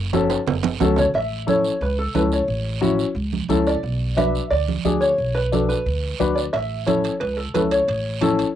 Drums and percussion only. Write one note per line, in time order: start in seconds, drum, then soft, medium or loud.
0.13 high conga medium
0.13 high timbale medium
0.13 short guiro medium
0.30 high timbale medium
0.30 short guiro medium
0.47 cowbell medium
0.47 low conga medium
0.47 low timbale medium
0.47 long guiro medium
0.63 high conga medium
0.63 low timbale medium
0.80 high conga medium
0.80 low timbale medium
0.80 short guiro medium
0.96 low conga medium
0.96 low timbale medium
0.96 short guiro medium
1.14 long guiro medium
1.48 high conga medium
1.48 short guiro medium
1.64 short guiro medium
1.81 long guiro medium
2.15 high conga medium
2.15 short guiro medium
2.32 short guiro medium
2.48 long guiro medium
2.82 high conga medium
2.82 short guiro medium
2.99 short guiro medium
3.16 long guiro medium
3.33 high conga medium
3.50 high conga medium
3.50 short guiro medium
3.67 short guiro medium
3.84 long guiro medium
4.18 high conga medium
4.18 short guiro medium
4.35 short guiro medium
4.51 long guiro medium
4.68 high conga medium
4.85 high conga medium
4.85 short guiro medium
5.02 short guiro medium
5.18 long guiro medium
5.53 high conga medium
5.53 short guiro medium
5.70 short guiro medium
5.87 long guiro medium
6.20 high conga medium
6.20 short guiro medium
6.37 short guiro medium
6.54 high timbale medium
6.54 long guiro medium
6.87 high conga medium
6.87 high timbale medium
6.87 short guiro medium
7.04 high timbale medium
7.04 short guiro medium
7.21 high timbale medium
7.21 long guiro medium
7.55 high conga medium
7.55 high timbale medium
7.55 short guiro medium
7.71 high timbale medium
7.71 short guiro medium
7.89 high timbale medium
7.89 long guiro medium
8.22 high conga medium
8.22 high timbale medium
8.22 short guiro medium
8.39 high timbale medium
8.39 short guiro medium